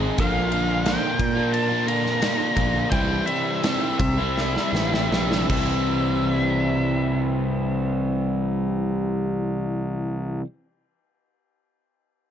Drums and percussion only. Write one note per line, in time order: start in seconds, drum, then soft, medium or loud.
0.18 kick loud
0.18 ride loud
0.52 ride medium
0.86 snare loud
0.86 ride loud
1.20 kick medium
1.20 ride medium
1.54 ride loud
1.88 ride medium
2.06 snare soft
2.22 snare loud
2.22 ride loud
2.57 kick medium
2.57 ride medium
2.92 kick loud
2.92 ride loud
3.27 ride medium
3.63 snare loud
3.63 ride loud
4.00 kick medium
4.00 ride medium
4.38 snare medium
4.57 snare medium
4.75 snare medium
4.94 snare medium
5.13 snare loud
5.32 snare medium
5.50 kick loud
5.50 crash loud